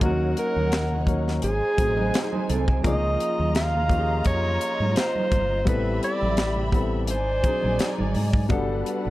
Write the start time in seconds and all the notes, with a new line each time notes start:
0.00 D#2 F#3 A#3 C#4 D#4 A#4 C#5 F#5, kick, closed hi-hat, muted conga, low conga
0.05 F#4
0.37 A#4, closed hi-hat
0.56 D#2, high conga
0.72 snare, closed hi-hat
0.91 muted conga, low conga
1.06 F#3 A#3 C#4 D#4 A#4, kick, closed hi-hat
1.28 snare
1.42 G#1 D#4 G#4 C5 G#5, closed hi-hat, muted conga
1.77 A1 F#3 A3 C4 D#4 G#4, kick, closed hi-hat
1.97 F#4 D#5, high conga
2.14 snare, closed hi-hat
2.32 D#4 C5, muted conga, high conga
2.49 C2 C4 A4, closed hi-hat, low conga
2.68 C4 G#4, kick
2.83 C#2 F3 A#3 C#4 D#4 F4 G#4 D#5 A#5, kick, closed hi-hat, muted conga, low conga
3.20 closed hi-hat
3.39 D#2, high conga
3.55 F5, snare, closed hi-hat
3.74 low conga
3.88 F3 A#3 C#4 D#4 G4, kick, closed hi-hat
3.98 G#4
4.25 F2 C#5, kick, closed hi-hat, muted conga
4.45 muted conga
4.61 closed hi-hat
4.80 G#2, high conga
4.96 C5, snare, closed hi-hat, muted conga
5.16 muted conga, high conga
5.31 G1, kick, closed hi-hat, low conga
5.65 A1 G3 B3 C4 E4 G4 A4 B4 E5 B5, kick, closed hi-hat, low conga
5.86 muted conga
6.03 D5, closed hi-hat
6.22 A1, high conga
6.37 snare, closed hi-hat, muted conga
6.56 low conga
6.72 G3 B3 C4 E4 A4, kick, closed hi-hat
7.07 G#1 D#4 C5 D5 G#5, closed hi-hat, muted conga
7.43 F#3 C4 D4 D#4 G#4, muted fingered electric bass stroke, kick, closed hi-hat
7.63 A#1, high conga
7.79 snare, closed hi-hat
7.98 G#1, muted conga, high conga
8.15 G#2, open hi-hat, low conga
8.33 kick, high conga
8.49 G1 G3 B3 D4 F#4 A4 B4 F#5, kick, closed hi-hat, muted conga, low conga
8.69 muted conga
8.86 closed hi-hat
9.05 A1, high conga